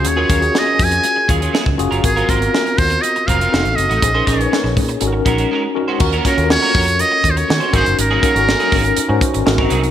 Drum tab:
CC |----------------|----------------|----------------|x---------------|
HH |x-xx--oxx-xx--xx|xxxx-xoxxxxx-xxx|x-xx--oxx-xx----|-xxx-xoxx-xx-xxx|
SD |----o-------o---|----o-------o---|--o-oo----------|--o-oo------o---|
BD |--o---o---o--o--|o-o---o---o-----|o-o---o---o-----|o-o---o---o---o-|

CC |----------------|
HH |x-xx-xoxx-xx--xx|
SD |----oo------o---|
BD |--o---o---o--o--|